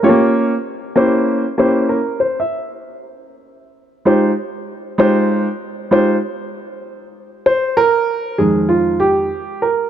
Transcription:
Already playing: A#4
0.03 A3 C#4 F4 G4 C#5
0.09 A#3
0.96 A#3 C#4 E4 G4 C5
1.58 A#3 C#4 E4 G4 C5
1.89 A#4
2.20 C5
2.40 E5
4.05 G#3 D#4 F4 G4 C5
4.98 G#3 D#4 F4 G4 C5
5.91 G#3 D#4 F4 G4 C5
7.46 C5
7.77 A#4
8.38 F2 D#3 G#3 G#4
8.69 F4
9.00 G4
9.62 A#4

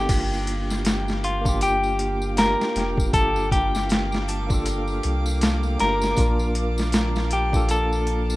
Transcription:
Already playing: C4 D#4 G4 A4 C5
0.06 G1 A#3 D4, kick, closed hi-hat, crash, tambourine
0.10 A#3 F4 G4 F5 G5 D6
0.34 tambourine
0.47 closed hi-hat
0.70 snare, tambourine
0.85 snare, closed hi-hat, tambourine
1.08 snare, tambourine
1.24 F4, closed hi-hat
1.42 A#3 D4, kick
1.46 F4 G4, tambourine
1.61 G4, closed hi-hat, tambourine
1.84 tambourine
1.99 closed hi-hat
2.22 tambourine
2.36 A#3 D4 F4 G4 A#4, snare, closed hi-hat, tambourine
2.61 snare, tambourine
2.75 F1, snare, closed hi-hat
2.98 kick, tambourine
3.11 G1 A#3 D4 A4, kick, closed hi-hat, tambourine
3.15 F4 G4
3.36 tambourine
3.51 G4, kick, closed hi-hat
3.75 snare, tambourine
3.89 snare, closed hi-hat, tambourine
4.12 snare, tambourine
4.28 closed hi-hat, triangle
4.47 A#3 D4, kick, tambourine
4.51 F4 A4
4.65 closed hi-hat, tambourine
4.88 tambourine
5.03 C2, closed hi-hat
5.26 tambourine
5.41 snare, closed hi-hat, tambourine
5.63 tambourine
5.77 A#3 D4 F4 G4 A#4, closed hi-hat
5.81 G1, snare
6.01 snare, tambourine
6.14 A#1 A#3 D4, kick, closed hi-hat, tambourine
6.19 F4 A#4 A5
6.39 tambourine
6.55 closed hi-hat
6.78 snare, tambourine
6.92 snare, closed hi-hat, tambourine
7.16 snare, tambourine
7.31 G4, closed hi-hat
7.49 A#3 D4, kick
7.54 F4 A4, tambourine
7.69 A4, closed hi-hat, tambourine
7.92 tambourine
8.07 closed hi-hat
8.30 tambourine

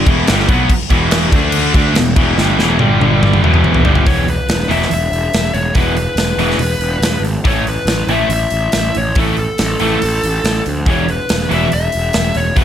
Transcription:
0.07 E1 E2 B2 E3, kick, crash
0.27 G1 G2 D3 G3, snare, crash
0.39 snare
0.47 B1 B2 F#3 B3, kick, crash
0.70 kick, crash
0.90 E1 E2 B2 E3, kick, crash
1.11 snare, crash
1.32 D2 D3 A3 D4, kick, crash
1.52 crash
1.74 D2 D3 A3 D4, kick, crash
1.95 E1 E2 B2, snare, crash
2.16 E1 E2 B2 E3, kick, crash
2.36 G1 G2 D3 G3, snare
2.58 E1 E2 B2 E3, snare
2.78 G1 G2 D3 G3, high tom
3.00 G1 G2 D3 G3, high tom
3.23 mid tom
3.33 mid tom
3.42 E1 E2 B2 E3, mid tom
3.54 mid tom
3.64 mid tom
3.74 floor tom
3.85 G1 G2 D3 G3, floor tom
3.95 floor tom
4.06 E1 E2 B2 E3 C#5, kick, open hi-hat
4.28 B4, open hi-hat
4.49 E1, snare, open hi-hat
4.68 E1 E2 B2 E3 E5, open hi-hat
4.82 snare
4.91 E1 E5, open hi-hat
5.12 E1, open hi-hat
5.34 E1, snare, open hi-hat
5.54 E1 C#5, open hi-hat
5.75 E1 E2 B2 E3 B4, kick, open hi-hat
5.97 B4, open hi-hat
6.16 E1, snare, open hi-hat
6.38 E1 E2 B2 E3, open hi-hat
6.51 snare
6.58 E1, open hi-hat
6.80 E1, open hi-hat
7.00 E1, snare, open hi-hat
7.20 G#1
7.25 open hi-hat
7.44 A1 A2 E3 A3 C#5, kick, open hi-hat
7.67 B4, open hi-hat
7.86 A1, snare, open hi-hat
8.07 A1 A2 E3 A3 E5, open hi-hat
8.29 A1, open hi-hat
8.33 E5
8.50 A1, open hi-hat
8.72 A1, snare, open hi-hat
8.95 A1 C#5, open hi-hat
9.15 A1 A2 E3 A3 A4, kick, open hi-hat
9.37 A4, open hi-hat
9.58 A1, snare, open hi-hat
9.79 A1 A2 E3 A3, open hi-hat
10.02 A1, open hi-hat
10.23 A1, open hi-hat
10.44 A1, snare, open hi-hat
10.66 D2, open hi-hat
10.86 E1 E2 B2 E3, kick, open hi-hat
10.91 C#5
11.09 B4, open hi-hat
11.29 E1, snare, open hi-hat
11.51 E1 E2 B2 E3 E5, open hi-hat
11.72 E1 E5, open hi-hat
11.92 E1, open hi-hat
12.13 E1, snare, open hi-hat
12.35 E1 C#5, open hi-hat
12.56 E1 E2 B2 E3 B4, kick, open hi-hat

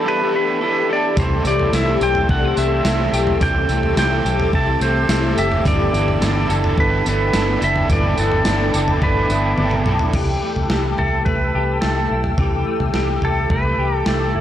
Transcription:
Already playing: E3 B3 G4 A4 B5 E6
0.04 G3 B3 D4 E4 A4 B4
0.32 B3 E4 A4 B4
0.37 D4
0.60 B3 D4 E4
0.64 A4
0.89 D4 E4 A4 D5
1.16 C2 C3 E3 G3 A3 C4 E4 A4 C5 C6, kick, floor tom, tambourine
1.45 C2 A3 C4 E4 A4 D5, tambourine
1.59 floor tom
1.72 C2 A3 C4 E4 E5, snare, tambourine
1.77 A4
2.00 B1 C4 E4 G4 A4 D5 G5, tambourine
2.04 A3
2.15 floor tom
2.28 C2 C3 G3 A3 C4 D4 E4 A4 F#5, kick
2.44 E4
2.55 C2 A3 C4 E4 A4 E5 G5, tambourine
2.59 A3
2.82 C2 A3 C4 E4, snare, tambourine
2.87 A4
3.11 B1 A3 C4 E4 G4 A4, tambourine
3.27 floor tom
3.39 C2 C3 E3 G3 A3 C4 E4 A4 D6, kick, floor tom, tambourine
3.43 G5
3.67 C2 A3 C4 E4 A4, tambourine
3.71 A3
3.83 floor tom
3.95 C2 A3 C4 E4 G5, snare, tambourine
3.99 A4
4.22 B1 C4 E4 G4 A4, tambourine
4.26 A3
4.40 floor tom
4.51 C2 C3 G3 A3 C4 E4 A4 A5, kick
4.80 C2 A3 C4 E4 A4 C5, tambourine
4.85 A3
5.08 C2 A3 C4 E4 E5, snare, tambourine
5.12 A4
5.36 F#1 C4 E4 G4 A4 E5, tambourine
5.40 A3
5.52 floor tom
5.64 G1 E3 G3 B3 D4 E4 A4 G5 B5, kick, floor tom, tambourine
5.68 D5
5.91 G1 B3 E4 A4, tambourine
5.96 D4
6.08 floor tom
6.19 G1 B3 D4 E4, snare, tambourine
6.23 A4
6.48 F#1 E4 A4, tambourine
6.52 D4
6.64 floor tom
6.77 G1 G3 B3 D4 E4 A4 B4, kick
7.04 G1 B3 E4 A4, tambourine
7.08 D4 B4
7.32 G1 B3 D4 E4, snare, tambourine
7.37 A4
7.60 F#1 E4 A4, tambourine
7.64 D4 E5
7.76 floor tom
7.89 G1 E3 G3 B3 D4 E4 A4 D5 D6, kick, floor tom, tambourine
8.16 G1 B3 E4 A4, tambourine
8.21 D4
8.32 floor tom
8.38 D5
8.44 G1 B3 D4 E4 A4, snare, tambourine
8.73 F#1 E4 A4, tambourine
8.77 D4
8.88 floor tom
9.01 G1 G3 B3 D4 E4 A4 B4, kick, floor tom
9.29 G1 B3 E4 A4 E5, tambourine
9.33 D4
9.50 G5
9.57 G1 B3 D4 E4 A4, high tom
9.69 A5, mid tom
9.84 B1 E4 A4, mid tom
9.89 D4
9.99 floor tom
10.13 C2 E3 G4 A4 G5 A5 E6, kick, floor tom, crash
10.43 A3
10.56 C2, floor tom
10.70 C2 G4, snare
10.98 C2 E4 A4, floor tom
11.25 C2 A3 B4, kick, floor tom
11.55 C2 G4
11.81 C2 A3 A4, snare
12.11 B1 E4
12.24 floor tom
12.38 C2 E3 G4 D6, kick, floor tom
12.67 A3
12.80 C2, floor tom
12.94 C2 G4, snare
13.22 C2 E4 A4, floor tom
13.50 C2 A3 B4, kick, floor tom
13.78 C2 G4
13.96 A4
14.06 C2 A3 A4, snare
14.35 F#1 E4

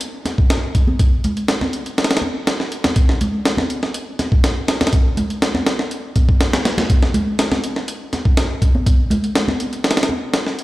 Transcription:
0.01 closed hi-hat
0.25 snare, closed hi-hat, high conga
0.38 kick
0.50 snare, closed hi-hat
0.75 kick, closed hi-hat
0.87 high conga
0.99 kick, closed hi-hat
1.24 closed hi-hat, low conga
1.37 closed hi-hat
1.48 snare, closed hi-hat
1.61 snare, high conga
1.73 closed hi-hat
1.86 closed hi-hat
1.98 snare, closed hi-hat
2.04 snare, closed hi-hat
2.11 snare, closed hi-hat
2.17 snare, closed hi-hat
2.22 high conga
2.47 snare, closed hi-hat
2.60 snare
2.72 closed hi-hat
2.84 snare, closed hi-hat, high conga
2.96 kick, closed hi-hat
3.09 snare
3.21 closed hi-hat, low conga
3.45 snare, closed hi-hat
3.57 snare, high conga
3.70 closed hi-hat
3.83 snare
3.94 closed hi-hat
4.19 snare, closed hi-hat, high conga
4.32 kick
4.44 snare, closed hi-hat
4.68 snare, closed hi-hat
4.81 snare, closed hi-hat, high conga
4.87 snare, closed hi-hat
4.93 kick, closed hi-hat
5.17 closed hi-hat, low conga
5.30 closed hi-hat
5.42 snare, closed hi-hat
5.54 snare, high conga
5.66 snare, closed hi-hat
5.79 snare
5.91 closed hi-hat
6.16 kick, closed hi-hat, high conga
6.29 kick
6.41 snare, closed hi-hat
6.53 snare, closed hi-hat
6.65 snare, closed hi-hat
6.78 snare, closed hi-hat, high conga
6.90 kick, closed hi-hat
7.03 snare
7.14 closed hi-hat, low conga
7.39 snare, closed hi-hat
7.52 snare, high conga
7.64 closed hi-hat
7.76 snare
7.88 closed hi-hat
8.13 snare, closed hi-hat, high conga
8.25 kick
8.37 snare, closed hi-hat
8.62 kick, closed hi-hat
8.75 high conga
8.86 kick, closed hi-hat
9.10 closed hi-hat, low conga
9.24 closed hi-hat
9.35 snare, closed hi-hat
9.48 snare, high conga
9.60 closed hi-hat
9.73 closed hi-hat
9.84 snare, closed hi-hat
9.91 snare, closed hi-hat
9.97 snare, closed hi-hat
10.03 snare, closed hi-hat
10.09 high conga
10.34 snare, closed hi-hat
10.46 snare
10.59 closed hi-hat

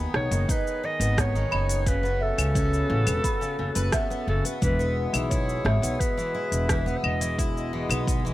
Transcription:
Already playing: D#3 B3 G#4 B5
0.14 B1 C#5, cross-stick
0.31 F#1 D#3, open hi-hat, shaker
0.48 D#4 B4 D#5, kick, open hi-hat, shaker
0.67 shaker
0.83 D#3 D#5
1.00 G#1 B3, open hi-hat, shaker
1.18 C#5, kick, cross-stick, open hi-hat, shaker
1.35 D#3, shaker
1.51 F#1 D#4 B5, claves
1.69 open hi-hat, shaker
1.85 C#3 F#4 B4, kick, open hi-hat, shaker
2.03 B3, shaker
2.20 A4 E5
2.38 C#2 C#3, open hi-hat, claves, shaker
2.55 C#4, kick, open hi-hat, shaker
2.74 shaker
2.90 A1 C#3
3.06 E1 B3, open hi-hat, claves, shaker
3.24 B5, kick, open hi-hat, shaker
3.41 C#3, shaker
3.59 F#1 C#3
3.75 F#1 B4, open hi-hat, shaker
3.92 B3 E5, kick, cross-stick, open hi-hat, shaker
4.10 B3, shaker
4.27 F#1 C#3 A4
4.45 B3, open hi-hat, shaker
4.61 E1 B2 E3 G#3 E4 B4, kick, open hi-hat, shaker
4.79 B3, shaker
4.97 B4
5.13 B1 E3, open hi-hat, claves, shaker
5.30 E4 C#5, kick, open hi-hat, shaker
5.49 shaker
5.65 G#1 E3 E5, cross-stick
5.82 B1 B3, open hi-hat, shaker
6.00 B4, kick, open hi-hat, shaker
6.17 E3, shaker
6.34 E4
6.52 E1, open hi-hat, shaker
6.69 E3 B4, kick, cross-stick, open hi-hat, shaker
6.86 B3, shaker
6.97 E5
7.04 E1 D#5, claves
7.21 E3, open hi-hat, shaker
7.38 E4 D#5, kick, open hi-hat, shaker
7.57 shaker
7.73 E3
7.89 B1 B3, open hi-hat, claves, shaker
8.07 kick, open hi-hat, shaker
8.25 E3, shaker

